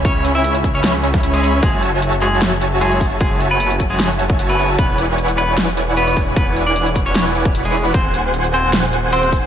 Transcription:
<<
  \new Staff \with { instrumentName = "Supersaw synth" } { \time 4/4 \key fis \minor \tempo 4 = 152 <cis' cis'' e'' gis'' b''>8. <cis' cis'' e'' gis'' b''>2~ <cis' cis'' e'' gis'' b''>16 <cis' cis'' e'' gis'' b''>8 <cis' cis'' e'' gis'' b''>8 | <fis' cis'' e'' gis'' a''>8. <fis' cis'' e'' gis'' a''>2~ <fis' cis'' e'' gis'' a''>16 <fis' cis'' e'' gis'' a''>8 <fis' cis'' e'' gis'' a''>8 | <fis' cis'' e'' gis'' a''>8. <fis' cis'' e'' gis'' a''>2~ <fis' cis'' e'' gis'' a''>16 <fis' cis'' e'' gis'' a''>8 <fis' cis'' e'' gis'' a''>8 | <e' b' cis'' d'' fis'' gis''>8. <e' b' cis'' d'' fis'' gis''>2~ <e' b' cis'' d'' fis'' gis''>16 <e' b' cis'' d'' fis'' cis'''>8 <e' b' cis'' d'' fis'' gis''>8 |
<e' b' cis'' d'' fis'' gis''>8. <e' b' cis'' d'' fis'' gis''>4.~ <e' b' cis'' d'' fis'' gis''>16 <e' b' cis'' d'' fis'' gis''>8 <e' b' cis'' d'' fis'' b''>4 | <bis' fis'' gis''>8. <bis' fis'' gis''>2~ <bis' fis'' gis''>16 <bis' fis'' bis''>8 <bis' fis'' gis''>8 | }
  \new Staff \with { instrumentName = "Clean electric guitar" } { \time 4/4 \key fis \minor <cis' cis''>8 r16 <e' e''>8 r8 <cis' cis''>8 r4 <gis gis'>8 r16 | <gis gis'>8 r4 <gis gis'>8 r4 <gis gis'>8 r8 | <gis gis'>8 r16 <b b'>8 r8 <gis gis'>8 r4 <b b'>8 r16 | <b b'>8 r4 <b b'>8 r4 <b b'>8 r8 |
<b b'>8 r16 <d' d''>8 r8 <cis' cis''>8 r4 <gis gis'>8 r16 | <bis bis'>8 r4 <bis bis'>8 r4 <bis bis'>8 r8 | }
  \new Staff \with { instrumentName = "Detuned saw bass" } { \clef bass \time 4/4 \key fis \minor cis,1 | fis,,1~ | fis,,1 | e,,1~ |
e,,1 | dis,,1 | }
  \new DrumStaff \with { instrumentName = "Drums" } \drummode { \time 4/4 <hh bd>8 hh8 hh16 hh16 <hh bd>8 <hh sn>8 hh16 <bd sn>16 hh16 hh16 hho8 | <hh bd>8 hh8 hh16 hh16 hh8 <hh sn>8 hh8 hh16 hh16 <hho bd>8 | <hh bd>8 hh8 hh16 hh16 <hh bd>8 <hh sn>8 hh16 bd16 hh16 hh16 hho8 | <hh bd>8 hh8 hh16 hh16 hh8 <hh sn>8 hh8 hh16 hh16 <hho bd>8 |
<hh bd>8 hh8 hh16 hh16 <hh bd>8 <hh sn>8 hh16 bd16 hh16 hh16 hho8 | <hh bd>8 hh8 hh16 hh16 hh8 <hh sn>8 hh8 hh16 hh16 <hho bd>8 | }
>>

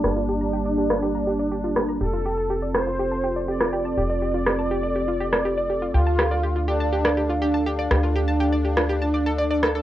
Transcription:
<<
  \new Staff \with { instrumentName = "Synth pluck" } { \time 4/4 \key f \mixolydian \tempo 4 = 122 g'16 f'16 g'16 bes''16 g'16 d''16 g'16 f'16 g'16 bes''16 g'16 d''16 g'16 f'16 g'16 bes''16 | g'16 f'16 g'16 a''16 g'16 d''16 g'16 f'16 g'16 a''16 g'16 d''16 g'16 f'16 g'16 a''16 | g'16 d''16 g'16 f'16 g'16 a''16 g'16 d''16 g'16 f'16 g'16 a''16 g'16 d''16 g'16 f'16 | g'16 a''16 g'16 d''16 g'16 f'16 g'16 a''16 g'16 d''16 g'16 f'16 g'16 a''16 g'16 d''16 |
g'16 f'16 g'16 a''16 g'16 d''16 g'16 f'16 g'16 a''16 d''16 a'16 d''16 d''16 a'16 a'16 | }
  \new Staff \with { instrumentName = "Supersaw synth" } { \time 4/4 \key f \mixolydian d'1 | a'4. c''4. d''4~ | d''1 | f'4. d'4. d'4~ |
d'1 | }
  \new Staff \with { instrumentName = "Analog synth pad" } { \time 4/4 \key f \mixolydian <g bes d' g'>1 | <c' f' a'>1~ | <c' f' a'>1 | <d' d'' f''>1~ |
<d' d'' f''>1 | }
  \new Staff \with { instrumentName = "Analog synth bass" } { \clef bass \time 4/4 \key f \mixolydian g,,1 | f,,1 | f,,1 | d,1 |
d,1 | }
  \new DrumStaff \with { instrumentName = "Drums" } \drummode { \time 4/4 ss4 r8. ss16 r4 r8 ss8 | r4 r8 ss8 r4 r16 ss8. | r4 ss4 r8. ss16 r4 | r8 ss8 r4 r16 ss8. r4 |
ss4 r8. ss16 r4 r8 ss8 | }
>>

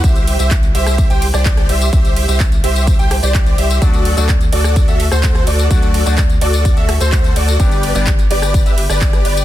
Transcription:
<<
  \new Staff \with { instrumentName = "Grand piano" } { \time 4/4 \key c \lydian \tempo 4 = 127 e''8. e''16 r8 e''8. g''16 r16 d''8. e''8 | e''8. e''16 r8 e''8. g''16 r16 d''8. e''8 | d''8. d''16 r8 d''8. e''16 r16 c''8. d''8 | d''8. d''16 r8 d''8. e''16 r16 c''8. d''8 |
d''8. d''16 r8 d''8. e''16 r16 d''8. d''8 | }
  \new Staff \with { instrumentName = "Supersaw synth" } { \time 4/4 \key c \lydian <g' c'' e''>8. <g' c'' e''>16 r8 <g' c'' e''>8. <g' c'' g''>16 r16 <g' c'' d''>8. <g' c'' e''>8 | <g' c'' e''>8. <g' c'' e''>16 r8 <g' c'' e''>8. <g' c'' g''>16 r16 <g' c'' d''>8. <g' c'' e''>8 | <fis' a' d''>8. <fis' a' d''>16 r8 <fis' a' d''>8. <fis' a' e''>16 r16 <fis' a' c''>8. <fis' a' d''>8 | <fis' a' d''>8. <fis' a' d''>16 r8 <fis' a' d''>8. <fis' a' e''>16 r16 <fis' a' c''>8. <fis' a' d''>8 |
<g' b' d''>8. <g' b' d''>16 r8 <g' b' d''>8. <g' b' e''>16 r16 <g' b' d''>8. <g' b' d''>8 | }
  \new Staff \with { instrumentName = "Clean electric guitar" } { \time 4/4 \key c \lydian r1 | r1 | <fis a d' fis'>8. <fis a d' fis'>16 r2. | <fis a d' fis'>8. <fis a d' fis'>16 r2. |
<g, g b d' g'>8. <g, g b d' g'>16 r2. | }
  \new Staff \with { instrumentName = "Sub bass" } { \clef bass \time 4/4 \key c \lydian c,8. c,8. c,8. c,8 c,8. c,8 | c,8. c,8. c,8. c,8 c,8. c,8 | d,8. d,8. d,8. d,8 d,8. d,8 | d,8. d,8. d,8. d,8 d,8. d,8 |
g,,8. g,,8. g,,8. g,,8 g,,8. g,,8 | }
  \new DrumStaff \with { instrumentName = "Drums" } \drummode { \time 4/4 <hh bd cymr tamb>16 <hh tamb>16 <hho cymr>16 <hh tamb>16 <hc hh bd cymr tamb>16 <hh tamb>16 <hho cymr>16 <hh ss tamb>16 <hh bd cymr tamb>16 <hh tamb>16 <hho cymr>16 <hh ss tamb>16 <hc hh bd cymr tamb>16 <hh ss tamb>16 <hho cymr>16 <hh tamb>16 | <hh bd cymr tamb>16 <hh tamb>16 <hho cymr>16 <hh tamb>16 <hc hh bd cymr tamb>16 <hh tamb>16 <hho cymr>16 <hh tamb>16 <hh bd cymr tamb>16 <hh tamb>16 <hho cymr ss>16 <hh tamb>16 <hc hh bd cymr tamb>16 <hh tamb>16 <hho cymr>16 <hh tamb>16 | <hh bd cymr tamb>16 <hh tamb>16 <hho cymr>16 <hh tamb>16 <hc hh bd cymr tamb>16 <hh tamb>16 <hho cymr>16 <hh ss tamb>16 <hh bd cymr tamb>16 <hh tamb>16 <hho cymr>16 <hh ss tamb>16 <hc hh bd cymr tamb>16 <hh ss tamb>16 <hho cymr>16 <hh tamb>16 | <hh bd cymr tamb>16 <hh tamb>16 <hho cymr>16 <hh tamb>16 <hc hh bd cymr tamb>16 <hh tamb>16 <hho cymr>16 <hh tamb>16 <hh bd cymr tamb>16 <hh tamb>16 <hho cymr ss>16 <hh tamb>16 <hc hh bd cymr tamb>16 <hh tamb>16 <hho cymr>16 tamb16 |
<hh bd cymr tamb>16 <hh tamb>16 <hho cymr>16 <hh tamb>16 <hc hh bd cymr tamb>16 <hh tamb>16 <hho cymr>16 <hh ss tamb>16 <hh bd cymr tamb>16 <hh tamb>16 <hho cymr>16 <ss tamb>16 <hc hh bd cymr tamb>16 <hh ss tamb>16 <hho cymr>16 <hh tamb>16 | }
>>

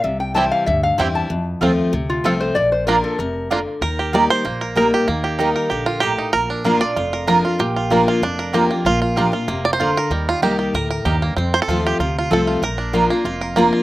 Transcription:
<<
  \new Staff \with { instrumentName = "Resonator guitar played with a steel bar" } { \time 4/4 \key bes \major \tempo 4 = 191 e''8 g''8 a''8 f''8 e''8 f''8 g''8 a''8~ | a''4 r4. f'8 a'8 c''8 | d''8 c''8 bes'8 a'8 bes'4 r4 | r1 |
r1 | r1 | r1 | r1 |
r1 | r1 | r1 | }
  \new Staff \with { instrumentName = "Mandolin" } { \time 4/4 \key bes \major r4 <c' e' c'' g''>8 r4. <c' e' c'' g''>8 r8 | r4 <c' f' c'' a''>8 r4. <c' f' c'' a''>8 r8 | r4 <bes f' d'' bes''>8 r4. <bes f' d'' bes''>8 r8 | r4 <bes g' ees'' bes''>8 r4. <bes g' ees'' bes''>8 r8 |
r4 <bes g' ees'' bes''>8 r4. <bes g' ees'' bes''>8 r8 | r4 <bes f' d'' bes''>8 r4. <bes f' d'' bes''>8 r8 | r4 <bes f' d'' bes''>8 r4. <bes f' d'' bes''>8 r8 | r4 <bes f' d'' bes''>8 r4. <bes f' d'' bes''>8 r8 |
r4 <bes g' ees'' bes''>8 r4. <bes g' ees'' bes''>8 r8 | r4 <c' f' c'' a''>8 r4. <c' f' c'' a''>8 r8 | r4 <bes f' d'' bes''>8 r4. <bes f' d'' bes''>8 r8 | }
  \new Staff \with { instrumentName = "Five-string banjo" } { \time 4/4 \key bes \major << { r4 <c' e' g'>8 r4. <c' e' g'>8 r8 | r4 <c' f'>8 r4. <c' f'>8 r8 | r4 <bes d' f'>8 r4. <bes d' f'>8 r8 | bes'4 d''8 c''4. bes'8 g'8 |
r2 r8 f'8 g'4 | bes'4. d''4. bes'4 | g'4. f'8 d'4 g'4 | f'4 g'8 r4 d''16 c''8. bes'8~ |
bes'8 f'8 g'4 bes'4. r8 | r8 c''16 a'8. g'4 f'8 a'4 | bes'4. r2 r8 | } \\ { r1 | r1 | r1 | r8 g'4. bes8 bes'4. |
bes8 g'8 ees'8 bes'8 g'4. ees'8 | r8 d'8 f'4 f'8 bes'4 f'8~ | f'8 f'8 bes4. bes'4 bes8~ | bes8 f'4 f'8 bes4 f'4 |
g4. g'4 bes'8 g'8 bes8 | c'4 f'4 f'4. f'8 | r8 d'8 f'8 bes8 f'8 bes'8 bes8 f'8 | } >> }
  \new Staff \with { instrumentName = "Steel-string acoustic guitar" } { \time 4/4 \key bes \major << { r4 <e g c' e'>4 r4 <e g c' e'>4 | r4 <f a c' f'>4 r4 <f a c' f'>4 | r4 <f bes d' f'>4 r2 | r4 <g bes ees' g'>4 r4 <g bes ees' g'>4 |
r4 <g bes ees' g'>4 r2 | r4 <f bes d' f'>8 f'8 r4 <f bes d' f'>8 <d' f'>8 | r4 <f bes d' f'>4 r4 <f bes d' f'>8 <d' f'>8 | r4 <f bes d' f'>8 <d' f'>8 r2 |
r4 <g bes ees' g'>4 r2 | r4 <f a c' f'>4 r4 <f a c' f'>4 | r4 <f bes d' f'>8 <d' f'>8 r4 <f bes d' f'>4 | } \\ { c2 g,2 | f,2 c2 | bes,2 c4 d4 | ees2 bes,2 |
ees2 d4 a,4 | bes,2 f,2 | bes,2 f,2 | bes,2 c4 d4 |
ees2 a,4 g,4 | f,2 c2 | bes,2 f,2 | } >> }
  \new Staff \with { instrumentName = "Upright bass" } { \clef bass \time 4/4 \key bes \major c,2 d,4 e,4 | f,4 ees,4 d,4 c,4 | bes,,2 f,,2 | ees,2 bes,,2 |
ees,2 bes,,2 | bes,,2 f,,2 | bes,,2 f,,2 | bes,,2 f,,2 |
ees,4 c,4 d,4 ees,4 | f,4 ees,4 d,4 c,4 | bes,,2 f,,2 | }
>>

